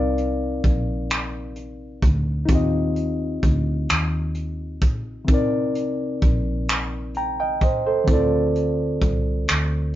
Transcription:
Already playing: C2 C3 C4 D#4 A#4 D5 F5
0.18 closed hi-hat
0.64 A#1, kick, closed hi-hat
1.10 finger snap, closed hi-hat
1.56 closed hi-hat
2.02 D2, kick, closed hi-hat
2.45 C4 D#4, kick, closed hi-hat
2.50 D#2 F4 G4
2.55 D#5
2.96 closed hi-hat
3.43 D2, kick, closed hi-hat
3.89 D#2, finger snap, closed hi-hat
4.35 closed hi-hat
4.82 A#1, kick, closed hi-hat
5.25 C3 C4, kick, closed hi-hat
5.29 C2 D#4 A#4
5.34 D5
5.75 closed hi-hat
6.22 A#1, kick, closed hi-hat
6.68 finger snap, closed hi-hat
7.14 G5 A#5, closed hi-hat
7.40 D#5 G5
7.61 C2 C5 D#5, kick, closed hi-hat
7.86 A4 C5
8.04 D3 C4, kick, closed hi-hat
8.09 D2 E4 A4
8.13 F4 D5
8.56 closed hi-hat
9.02 C2, kick, closed hi-hat
9.48 D2, finger snap, closed hi-hat

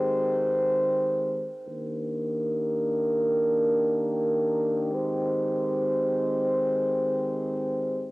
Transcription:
Already playing: D#3 G#3 C4 G4 C5
1.68 D#3 A#3 D4 G4 A#4
4.93 G#3 C4 C5

